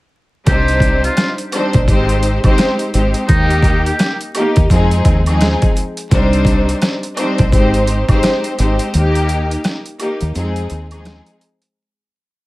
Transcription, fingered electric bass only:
0.47 C2
1.75 A#1
1.88 G#1
2.44 G#1
2.94 G#1
3.29 D#2
4.57 D#2
4.71 F2
5.05 D#2
6.12 C2
7.40 A#1
7.53 G#1
8.09 G#1
8.59 G#1
8.95 D#2
10.22 D#2
10.36 F2
10.71 D#2

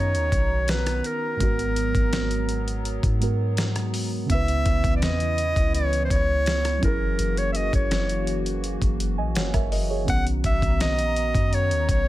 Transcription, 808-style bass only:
Already playing: F#2
0.15 D#2
0.32 B1
1.41 G#1
1.95 G#1
3.03 G#2
4.30 C#2
4.66 C#2
5.02 E2
5.56 C#2
6.11 C#2
6.83 F#1
7.19 F#1
7.73 F#1
8.82 F#1
9.18 A#1
9.36 F#1
9.54 F#1
10.08 B1
10.44 B1
10.62 B1
10.99 A#1
11.35 F#2
11.71 D#2
11.89 B1

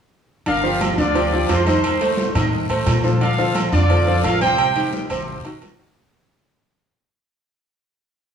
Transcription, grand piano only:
0.46 D3 D4 D5
0.64 F3 F4 G4
0.98 D3 D4 D5
1.15 F3 F4 G4
1.33 F3 F4 G4
1.67 D#3 D#4 D#5
2.01 A3 A4 C5
2.36 D#3 D#4 D#5
2.69 A3 A4 C5
3.04 F3 F4 A4
3.21 D3 D4 D5
3.39 F3 F4 A4
3.73 D3 D4 D5
3.90 F3 F4 A4
4.07 F3 F4 A4
4.42 C3 C4 C5
4.76 D#3 D#4 G4
5.10 C3 C4 C5
5.45 D#3 D#4 F#4
5.79 D#3 D#4 F#4

